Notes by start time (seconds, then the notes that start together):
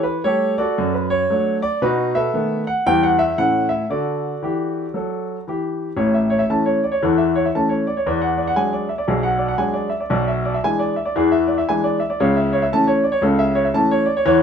Already playing: E3
0.03 B4
0.24 G3 A3 G4 A4 C#5
0.58 F#4 A4 D5
0.78 F#2
0.94 B4
1.10 C#5
1.30 F#3 A3 D4
1.62 D5
1.82 B2 D#4 F#4 B4
2.15 A4 B4 E5
2.34 D#3 A3 B3
2.67 F#5
2.86 E2 E3 G3 B3 G5
3.03 F#5
3.19 E5
3.38 A2 E3 A3 C#4 F#5
3.69 E5
3.90 D3 F#4 A4 D5
4.43 E3 G4
4.94 F#3 A4
5.48 E3 G4
5.97 A1 A2 C#5
6.14 E5
6.30 C#5
6.39 E5
6.50 E3 A3 C#4 A5
6.66 C#5
6.84 D5
6.92 C#5
7.03 E2 E3 A4
7.18 E5
7.36 C#5
7.45 E5
7.55 E3 A3 C#4 A5
7.69 C#5
7.87 D5
7.97 C#5
8.06 E2 E3 D5
8.22 F#5
8.38 D5
8.47 F#5
8.56 F#3 G#3 D4 G#5
8.73 D5
8.89 E5
8.98 D5
9.08 B1 B2 G#4
9.23 F#5
9.38 D5
9.48 F#5
9.58 F#3 G#3 D4 G#5
9.74 D5
9.90 E5
10.00 D5
10.10 B1 B2 D5
10.28 E5
10.45 D5
10.54 E5
10.63 E3 G#3 D4 G#5
10.79 D5
10.96 E5
11.05 D5
11.16 E2 E3 G#4
11.32 E5
11.47 D5
11.58 E5
11.69 E3 G#3 D4 G#5
11.84 D5
12.00 E5
12.10 D5
12.20 C#2 C#3 C#5
12.37 E5
12.53 C#5
12.62 E5
12.73 E3 A3 C#4 A5
12.87 C#5
13.04 D5
13.12 C#5
13.22 C#2 C#3 A4
13.39 E5
13.55 C#5
13.65 E5
13.74 E3 A3 C#4 A5
13.91 C#5
14.06 D5
14.17 C#5
14.25 E2 E3 C#5